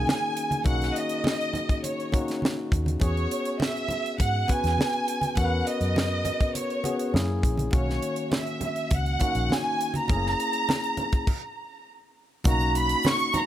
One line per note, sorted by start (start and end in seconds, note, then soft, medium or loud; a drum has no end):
0.00 3.04 D#3 medium
0.00 0.65 A#3 medium
0.00 0.65 C#4 medium
0.00 0.49 D#4 medium
0.00 0.66 F#4 medium
0.00 0.49 G#4 medium
0.00 0.67 G#5 loud
0.07 snare loud
0.07 high conga medium
0.37 closed hi-hat medium
0.51 closed hi-hat soft
0.51 high conga medium
0.64 0.89 B1 medium
0.64 1.62 A#3 medium
0.64 1.62 C#4 medium
0.64 1.62 D#4 medium
0.64 1.62 F#4 medium
0.64 0.94 F#5 medium
0.64 kick loud
0.64 closed hi-hat medium
0.64 muted conga soft
0.82 snare soft
0.82 closed hi-hat soft
0.96 1.84 D#5 medium
0.96 closed hi-hat medium
1.09 closed hi-hat soft
1.24 snare loud
1.24 high conga medium
1.41 closed hi-hat soft
1.53 closed hi-hat soft
1.53 muted conga soft
1.53 low conga medium
1.69 kick medium
1.69 closed hi-hat soft
1.84 2.39 C#5 medium
1.84 closed hi-hat medium
1.84 muted conga soft
2.00 closed hi-hat soft
2.12 2.85 A#3 medium
2.12 2.85 C#4 medium
2.12 2.85 D#4 medium
2.12 2.85 F#4 medium
2.12 kick medium
2.12 closed hi-hat medium
2.12 muted conga soft
2.28 snare soft
2.28 closed hi-hat soft
2.42 snare loud
2.42 high conga medium
2.72 2.96 D#2 medium
2.72 kick medium
2.72 closed hi-hat medium
2.86 closed hi-hat soft
2.86 high conga medium
3.00 3.25 E2 medium
3.00 3.97 B3 medium
3.00 3.98 C#4 medium
3.00 3.98 F#4 medium
3.00 3.98 G#4 medium
3.00 3.57 C#5 medium
3.00 kick loud
3.00 closed hi-hat medium
3.00 muted conga soft
3.17 closed hi-hat soft
3.31 closed hi-hat medium
3.45 closed hi-hat soft
3.60 4.16 E5 medium
3.60 snare loud
3.60 high conga medium
3.77 closed hi-hat soft
3.88 closed hi-hat medium
3.88 muted conga soft
3.88 low conga medium
4.06 closed hi-hat soft
4.18 4.43 G#2 medium
4.18 4.50 F#5 medium
4.18 kick medium
4.18 closed hi-hat medium
4.18 muted conga soft
4.48 5.21 B3 medium
4.48 5.21 C#4 medium
4.48 5.21 F#4 medium
4.48 5.22 B4 medium
4.48 5.38 G#5 loud
4.48 kick medium
4.48 closed hi-hat medium
4.48 muted conga soft
4.64 4.76 E2 medium
4.64 snare soft
4.64 closed hi-hat soft
4.78 snare medium
4.78 high conga medium
4.93 closed hi-hat soft
5.08 closed hi-hat medium
5.21 closed hi-hat soft
5.21 high conga medium
5.36 5.61 E2 medium
5.36 6.34 B3 medium
5.36 6.34 C#4 medium
5.36 6.34 F#4 medium
5.36 5.44 A#4 medium
5.36 5.67 F#5 medium
5.36 kick loud
5.36 closed hi-hat medium
5.36 muted conga soft
5.45 6.38 B4 medium
5.67 6.56 D#5 medium
5.67 closed hi-hat medium
5.80 6.29 F#2 medium
5.80 closed hi-hat soft
5.96 snare medium
5.96 high conga medium
6.25 closed hi-hat medium
6.25 muted conga soft
6.25 low conga medium
6.41 kick medium
6.41 closed hi-hat soft
6.55 7.10 C#5 medium
6.55 closed hi-hat medium
6.55 muted conga soft
6.70 closed hi-hat soft
6.84 7.14 B3 medium
6.84 7.13 C#4 medium
6.84 7.14 F#4 medium
6.84 7.14 G#4 medium
6.84 closed hi-hat medium
6.84 muted conga soft
6.99 closed hi-hat soft
7.14 7.45 F#2 medium
7.14 7.62 A#3 medium
7.14 7.62 C#4 medium
7.14 7.62 E4 medium
7.14 7.63 G#4 medium
7.14 snare loud
7.14 high conga medium
7.43 7.67 A#1 medium
7.43 kick medium
7.43 closed hi-hat medium
7.58 closed hi-hat soft
7.58 high conga medium
7.71 7.97 B1 medium
7.71 8.70 D#3 medium
7.71 8.69 A#3 medium
7.71 8.70 C#4 medium
7.71 8.70 F#4 medium
7.71 8.29 C#5 medium
7.71 kick loud
7.71 closed hi-hat medium
7.71 muted conga soft
7.90 snare soft
8.02 closed hi-hat medium
8.16 closed hi-hat soft
8.32 8.93 E5 medium
8.32 snare loud
8.32 high conga medium
8.47 closed hi-hat soft
8.61 closed hi-hat soft
8.61 muted conga soft
8.61 low conga medium
8.76 closed hi-hat soft
8.91 9.15 C#2 medium
8.91 9.51 F#5 medium
8.91 kick medium
8.91 closed hi-hat medium
8.91 muted conga soft
9.06 closed hi-hat soft
9.20 9.93 A#3 medium
9.20 9.93 C#4 medium
9.20 9.93 D#4 medium
9.20 9.94 F#4 medium
9.20 kick medium
9.20 closed hi-hat medium
9.20 muted conga soft
9.35 9.47 A#1 medium
9.35 closed hi-hat soft
9.50 9.96 G#5 medium
9.50 snare medium
9.50 high conga medium
9.81 closed hi-hat medium
9.94 closed hi-hat soft
9.94 high conga medium
9.98 11.84 A#5 loud
10.08 10.33 F#1 medium
10.08 10.16 A3 medium
10.08 11.06 C#4 medium
10.08 11.06 E4 medium
10.08 11.07 G#4 medium
10.08 kick loud
10.08 closed hi-hat medium
10.08 muted conga soft
10.16 11.09 A#3 medium
10.27 snare soft
10.40 closed hi-hat medium
10.53 closed hi-hat soft
10.69 snare medium
10.69 high conga medium
10.84 closed hi-hat soft
10.97 closed hi-hat medium
10.97 muted conga soft
10.97 low conga medium
11.12 kick medium
11.12 closed hi-hat soft
11.27 kick medium
11.27 crash medium
12.44 12.93 B1 medium
12.44 13.42 A#3 medium
12.44 13.42 C#4 medium
12.44 13.42 D#4 medium
12.44 13.42 F#4 medium
12.44 12.74 A#5 loud
12.44 kick loud
12.44 closed hi-hat medium
12.44 muted conga soft
12.44 shaker medium
12.60 shaker soft
12.75 13.04 B5 loud
12.75 closed hi-hat medium
12.75 shaker medium
12.89 closed hi-hat soft
12.89 shaker soft
13.03 snare loud
13.03 high conga medium
13.03 shaker medium
13.07 13.35 C#6 loud
13.19 shaker soft
13.33 13.46 A#5 medium
13.33 closed hi-hat medium
13.33 muted conga soft
13.33 low conga medium
13.33 shaker soft